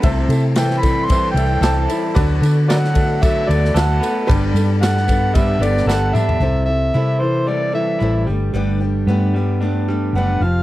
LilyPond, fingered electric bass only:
\new Staff \with { instrumentName = "Fingered electric bass" } { \clef bass \time 4/4 \key g \major \tempo 4 = 113 c,8 c2 c,8 c,8 r8 | d,8 d2 d,8 d,8 r8 | g,,8 g,2 g,,8 g,,8 r8 | c,4 c2 a,,8 g,,8 |
g,,4 g,2 fis,,8 f,,8 | }